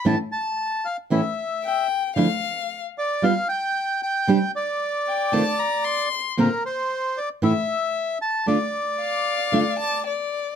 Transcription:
X:1
M:4/4
L:1/16
Q:1/4=114
K:Dm
V:1 name="Violin"
z12 g4 | f4- f z8 z3 | z6 g2 a2 b2 c'3 z | z16 |
z4 f6 a2 d4 |]
V:2 name="Bandoneon"
a2 a4 f2 e6 z2 | z6 d2 f2 g4 g2- | g2 d12 z2 | B2 c4 d2 e6 a2 |
d12 z4 |]
V:3 name="Nylon-string guitar"
[A,,E,A,^CE]2 z6 [A,,E,A,CE]2 z6 | [D,F,A,DE]2 z6 [G,=B,F]2 z6 | [C,G,CDG]2 z6 [C,_E,A,CF]2 z6 | [B,,D,B,CF]2 z6 [A,,E,A,^CE]2 z6 |
[D,A,DF]2 z6 [D,A,DF]2 z6 |]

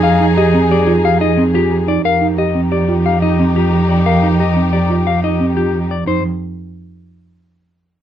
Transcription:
X:1
M:6/4
L:1/8
Q:1/4=179
K:Fdor
V:1 name="Clean electric guitar"
f z e z d z f e z G z d | f z e z d z f e z G z d | f z e z d z f e z G z d | c z8 z3 |]
V:2 name="Clarinet"
A8- A3 z | G12- | G8- G3 z | z12 |]
V:3 name="Marimba"
A E G C G F G E C F G E | B E G C G F G E C F G z | B E G C G F G E C F G z | E z8 z3 |]
V:4 name="String section"
[EA]8- [EA]3 z | [EG]12- | [EG]8- [EG]3 z | z12 |]
V:5 name="Cello" clef=bass
F,,12 | F,,12- | F,,12 | F,, z8 z3 |]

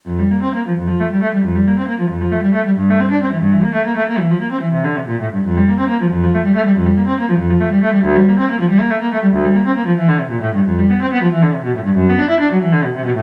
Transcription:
X:1
M:12/8
L:1/16
Q:3/8=91
K:F
V:1 name="Cello" clef=bass
F,, G, B, C B, F, F,, F, A, G, A, G, F,, G, B, C B, F, F,, F, A, G, A, G, | G,, A, C D C E, G,, E, B, A, B, A, B, E, F, B, C E, C, D, C, B,, A,, G,, | F,, G, B, C B, F, F,, F, A, G, A, G, F,, G, B, C B, F, F,, F, A, G, A, G, | D,, G, B, C B, F, G, B, A, B, A, G, D,, G, B, C B, F, E, D, C, B,, A,, G,, |
[K:Flyd] F,, G, B, C B, F, E, D, C, B,, A,, G,, ^F,, B, D E D ^F, E, D, B,, C, B,, A,, |]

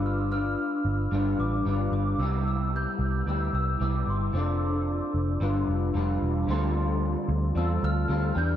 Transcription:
X:1
M:4/4
L:1/16
Q:"Swing 16ths" 1/4=112
K:Ddor
V:1 name="Glockenspiel"
f'2 f'4 z4 d'4 d'2 | e'2 e'2 g'4 e'2 e'2 d'2 c'2 | d'8 z8 | c'8 e'2 f'4 g'2 |]
V:2 name="Clean electric guitar"
[G,DFB]2 [DFB]6 [G,DFB]4 [G,DFB]4 | [C,G,B,EG]8 [G,B,EG]4 [G,B,EG]4 | [F,CDA]8 [G,DFB]4 [G,DFB]4 | [D,G,CFA]8 [G,CFA]4 [G,CFA]2 [E,B,DG]2 |]
V:3 name="Picked electric bass" clef=bass
G,,,4- G,,, z G,,,2 G,,,2 A,,,2 G,,,2 G,,,2 | C,,4- C,, z C,,2 D,,2 C,,2 C,,2 G,,,2 | F,,,4- F,,, z F,,,2 G,,,2 F,,,2 F,,,2 E,,,2 | D,,4- D,, z D,,2 E,,2 D,,2 D,,2 E,,2 |]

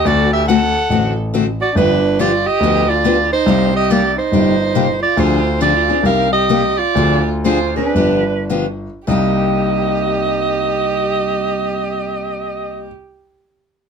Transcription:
X:1
M:4/4
L:1/8
Q:"Swing" 1/4=136
K:Cm
V:1 name="Clarinet"
d =e ^f3 z2 d | =B2 d e2 d2 c- | c e d c4 d | c2 d2 f e2 d- |
d z c =B3 z2 | e8- | e8 |]
V:2 name="Violin"
^F G =A3 z2 F | D2 F G2 F2 E- | E G G E4 F | F2 F2 B G2 F- |
F z F D3 z2 | G8- | G8 |]
V:3 name="Steel-string acoustic guitar"
[D,=A,C^F=A] z [D,A,CFA] z [D,A,CFA] z [D,A,CFA] z | [D,F,=B,DG] z [D,F,B,DG] z [D,F,B,DG] z [D,F,B,DG] z | [C,G,B,EG] z [C,G,B,EG] z [C,G,B,EG] z [C,G,B,EG] z | [D,F,CDA] z [D,F,CDA] [CDA] [C,G,B,EG] z [C,G,B,EG] z |
[D,F,CDA] z [D,F,CDA] [CDA] [D,F,=B,DG] z [D,F,B,DG] z | [C,G,B,EG]8- | [C,G,B,EG]8 |]
V:4 name="Grand piano" clef=bass
D,,4 =A,,,4 | G,,,4 D,,4 | C,,4 G,,,4 | D,,4 C,,4 |
D,,4 G,,,4 | C,,8- | C,,8 |]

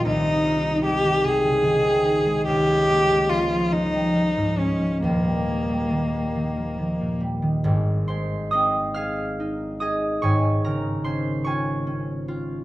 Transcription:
X:1
M:6/8
L:1/16
Q:3/8=48
K:Ab
V:1 name="Cello"
E4 G2 A6 | G4 F2 E4 D2 | B,8- B,2 z2 | z12 |
z12 |]
V:2 name="Harp"
z12 | z12 | z12 | z2 [cc']2 [ee']2 [ff']4 [ee']2 |
[dad']2 [Bb]2 [cc']2 [dad']6 |]
V:3 name="Harp" clef=bass
[C,,^D] E F E A, E, C, _D, E, C, E A, | D,, A, B, A, F, A, F, G, F, A,, A, F, | [E,,,E,,] G, A, G, E, G, E, F, E, B,, G, E, | [A,,,A,,]2 A,2 C2 A2 E2 A2 |
[A,,,A,,]2 D,2 D2 F2 D2 F2 |]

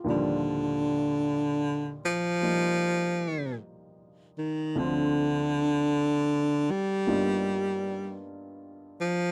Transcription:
X:1
M:4/4
L:1/8
Q:"Swing" 1/4=52
K:Eb
V:1 name="Upright piano"
F z6 z | z8 |]
V:2 name="Upright piano" clef=bass
[E,,B,,F,G,D]4 [F,G,B,E]4 | [D,,D,F,C]4 [G,,G,^A,=B,^DF]4 |]
V:3 name="Baritone saxophone" clef=bass
D,3 F,3 z E, | D,3 G,3 z F, |]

